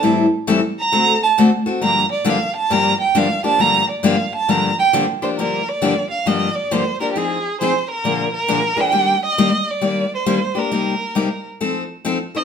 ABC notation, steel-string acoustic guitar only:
X:1
M:4/4
L:1/8
Q:"Swing" 1/4=135
K:Gm
V:1 name="Steel-string acoustic guitar"
[A,,=E,G,C=EA] z [A,,E,G,CEA] z [D,A,C^FA] z [D,A,CFA] [CFA] | [G,,D,F,B,DG] z [G,,D,F,B,DG] z [G,,D,F,B,DG] z [G,,D,F,B,DG] [F,B,DG] | [G,,D,F,B,DG] z [G,,D,F,B,DG] z [G,,D,F,B,DG] z [G,,D,F,B,DG] [F,B,DG] | [G,,D,F,B,DG] z [G,,D,F,B,DG] z [G,,D,F,B,DG] z [G,,D,F,B,DG] [F,B,DG] |
[F,CE_A] z [F,CEA] z [B,,D,F,B,DA] z [B,,D,F,B,DA] [F,B,DA] | [E,G,B,DG] z [E,G,B,DG] z [E,G,B,DG] z [E,G,B,DG] [B,DG] | [C,G,B,EG] z [C,G,B,EG] z [F,CEA] z [F,CEA] [CEA] |]